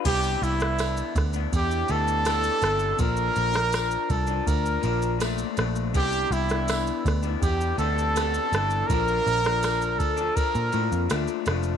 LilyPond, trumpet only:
\new Staff \with { instrumentName = "Trumpet" } { \time 4/4 \key c \major \tempo 4 = 82 g'8 e'4 r8 g'8 a'4. | bes'4. a'8 bes'4 r4 | g'8 e'4 r8 g'8 a'4. | bes'4. a'8 bes'4 r4 | }